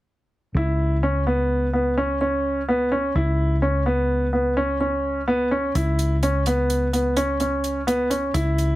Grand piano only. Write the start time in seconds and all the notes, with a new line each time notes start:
0.57 E4
1.03 C#4
1.27 B3
1.73 B3
1.97 C#4
2.21 C#4
2.68 B3
2.92 C#4
3.16 E4
3.62 C#4
3.86 B3
4.33 B3
4.57 C#4
4.80 C#4
5.28 B3
5.51 C#4
5.75 E4
6.23 C#4
6.47 B3
6.93 B3
7.17 C#4
7.40 C#4
7.87 B3
8.10 C#4
8.34 E4